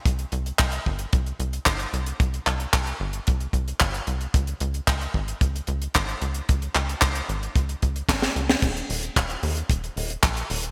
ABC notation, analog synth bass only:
X:1
M:4/4
L:1/8
Q:1/4=112
K:Cphr
V:1 name="Analog synth bass" clef=bass
C,, C,, C,, G,,, C,, C,, G,,, C,, | C,, C,, C,, G,,, C,, C,, G,,, C,, | D,, D,, D,, A,,, D,, D,, A,,, D,, | D,, D,, D,, A,,, D,, D,, A,,, D,, |
E,,, E,,, E,,, E,, E,,, E,,, B,,, E,,, |]